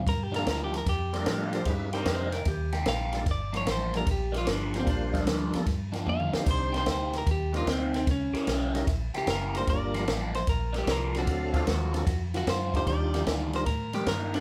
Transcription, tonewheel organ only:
X:1
M:4/4
L:1/8
Q:"Swing" 1/4=150
K:Gm
V:1 name="Tonewheel organ"
z [G,B,DFA] z3 [G,DFAB]3 | [_A,^CE=E=B] [G,=CD_E_B]2 z4 [G,B,DF=A] | z3 [G,B,DFA] z3 [G,B,DFc]- | [G,B,DFc]2 z [G,B,DFA] z3 [G,CDEc]- |
[G,CDEc]2 z3 [G,CDEB] z2 | z3 [G,^CE=E^A] z3 [G,^A,DFA]- | [G,^A,DF^A]2 z4 z [^F,CD=A=f]- | [^F,CDA=f]2 z [^F,CD^EA] z3 [G,D_E^EG]- |
[G,DE^EG]2 z [G,D_EFB] z3 [^F,CD=FA] |]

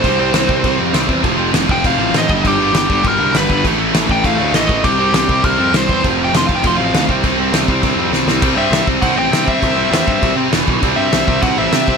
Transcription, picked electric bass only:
X:1
M:4/4
L:1/8
Q:1/4=200
K:C
V:1 name="Picked electric bass" clef=bass
C,,2 C,, C,, C,, F,, C,, E,, | F,,,2 F,,, F,,, F,,, A,,, A,,, G,,, | G,,,2 G,,, G,,, G,,, C,, G,,, G,,, | A,,,2 A,,, A,,, A,,, D,, A,,, A,,, |
C,,2 C,, C,, C,, F,, C,, E,, | F,,,2 F,,, F,,, F,,, A,,, D,, C,, | C,,2 C,, C,, C,, F,, C,, C,, | [K:Clyd] C,, G,, C,, C,, C,, A,,, C,2 |
C,,2 E,, G,, C,, C, E,,, B,,, | C,, G,, C,, C,, C,, A,,, C,2 |]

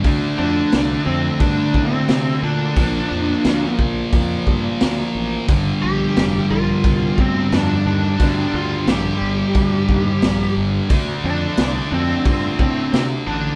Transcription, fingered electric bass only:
X:1
M:4/4
L:1/8
Q:1/4=88
K:Gm
V:1 name="Fingered electric bass" clef=bass
D,, F,, C,, F,, G,, A,, C, B,, | B,,, F,, D,, B,,, F,, G,, D,, A,,, | G,,, B,,, F,,, B,,, C,, D,, F,, E,, | D,, D,, B,,, G,,, D,, E,, B,,, G,,, |
D,, F,, C,, F,, G,, A,, C, A,,, |]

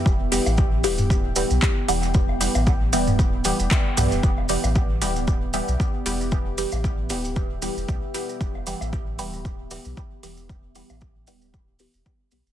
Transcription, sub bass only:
X:1
M:4/4
L:1/16
Q:"Swing 16ths" 1/4=115
K:Em
V:1 name="Sub bass" clef=bass
E,,,2 z A,,,3 D,,,4 z B,,, z2 E,,,2- | E,,,2 z A,,,3 D,,,4 z E,,, z2 B,,, E,,, | E,,,2 z A,,,3 D,,,4 z B,,, z2 E,,,2- | E,,,2 z A,,,3 D,,,4 z E,,, B,,, z3 |
E,,,2 z A,,,3 D,,,4 z B,,, z2 E,,,2- | E,,,2 z A,,,3 D,,,4 z E,,, z2 B,,, E,,, |]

